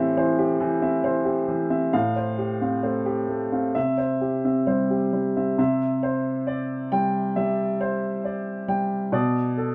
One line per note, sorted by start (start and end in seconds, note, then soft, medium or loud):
0.00 0.12 A2 medium
0.00 0.17 E3 medium
0.00 0.82 C4 medium
0.00 0.39 G4 medium
0.00 0.17 C5 medium
0.00 0.82 E5 medium
0.17 0.52 E3 medium
0.17 0.52 C5 medium
0.39 0.74 G4 medium
0.60 0.96 E3 medium
0.82 1.18 C4 soft
0.82 1.18 E5 medium
1.04 1.40 E3 medium
1.04 1.40 C5 medium
1.25 1.62 G4 medium
1.48 1.84 E3 medium
1.70 1.93 C4 soft
1.70 1.93 E5 medium
1.93 3.71 A2 medium
1.93 2.29 F5 medium
2.16 2.52 C5 soft
2.38 2.75 G4 soft
2.61 2.98 C4 soft
2.61 2.98 F5 soft
2.83 3.20 A3 soft
2.83 3.20 C5 soft
3.06 3.43 G4 medium
3.29 3.66 A3 soft
3.52 3.75 C4 soft
3.52 3.75 F5 soft
3.75 5.54 C3 medium
3.75 4.12 E5 medium
3.98 4.34 C5 soft
4.21 4.57 G4 soft
4.45 4.81 C4 soft
4.45 4.81 E5 soft
4.67 5.03 G3 soft
4.67 5.03 C5 medium
4.91 5.27 G4 soft
5.13 5.49 G3 soft
5.37 5.59 C4 soft
5.37 5.57 E5 soft
5.58 7.32 C3 medium
5.58 6.30 E5 medium
6.03 6.74 C5 medium
6.47 6.92 D5 medium
6.92 7.27 G3 soft
6.92 7.62 G5 medium
7.36 7.72 G3 medium
7.36 8.06 E5 medium
7.81 8.51 C5 medium
8.25 8.69 D5 medium
8.68 9.04 G3 medium
8.68 9.13 G5 medium
9.12 9.75 B2 medium
9.12 9.75 D5 medium
9.58 9.75 A4 medium